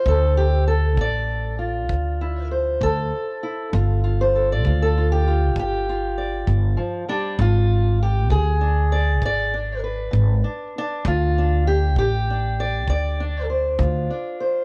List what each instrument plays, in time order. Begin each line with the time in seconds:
Already playing: steel-string acoustic guitar C5
0.06 upright bass D2, steel-string acoustic guitar D2 A4, kick
0.37 steel-string acoustic guitar G4
0.67 steel-string acoustic guitar A4
0.97 upright bass A1, steel-string acoustic guitar D2 D5, kick
1.59 steel-string acoustic guitar F4
1.89 upright bass D2, steel-string acoustic guitar D2, kick
2.21 steel-string acoustic guitar E4
2.51 steel-string acoustic guitar C5
2.81 upright bass D2, steel-string acoustic guitar D2 A4, kick
3.43 steel-string acoustic guitar E4
3.73 upright bass G1, steel-string acoustic guitar G3 F4, kick
4.04 steel-string acoustic guitar F4
4.21 steel-string acoustic guitar C5
4.35 steel-string acoustic guitar A4
4.52 steel-string acoustic guitar D5
4.65 upright bass D2, steel-string acoustic guitar G3 F4, kick
4.82 steel-string acoustic guitar A4
4.98 steel-string acoustic guitar F4
5.12 steel-string acoustic guitar G4
5.27 steel-string acoustic guitar F4
5.55 upright bass G1, steel-string acoustic guitar G3, kick
5.59 steel-string acoustic guitar G4
5.89 steel-string acoustic guitar F4
6.18 steel-string acoustic guitar D5
6.47 upright bass G1, kick
6.77 steel-string acoustic guitar F3
7.09 steel-string acoustic guitar G3 D4
7.39 upright bass G#1, steel-string acoustic guitar G#2 F4, kick
8.03 steel-string acoustic guitar G4
8.30 upright bass D2, steel-string acoustic guitar G#2 G#4, kick
8.61 steel-string acoustic guitar D4
8.92 steel-string acoustic guitar D5
9.22 upright bass G#1, steel-string acoustic guitar G#2 D5, kick
9.54 steel-string acoustic guitar D4
9.84 steel-string acoustic guitar B4
10.11 upright bass G#1, steel-string acoustic guitar G#2, kick
10.44 steel-string acoustic guitar D4
10.78 steel-string acoustic guitar D4
11.05 upright bass D2, steel-string acoustic guitar D2 F4, kick
11.38 steel-string acoustic guitar D4
11.67 steel-string acoustic guitar G4
11.96 upright bass A1, steel-string acoustic guitar D2 G4, kick
12.30 steel-string acoustic guitar D4
12.60 steel-string acoustic guitar D5
12.88 upright bass D2, steel-string acoustic guitar D2 D5, kick
13.20 steel-string acoustic guitar D4
13.50 steel-string acoustic guitar C5
13.79 upright bass D2, steel-string acoustic guitar D2 F4, kick
14.10 steel-string acoustic guitar D4
14.40 steel-string acoustic guitar C5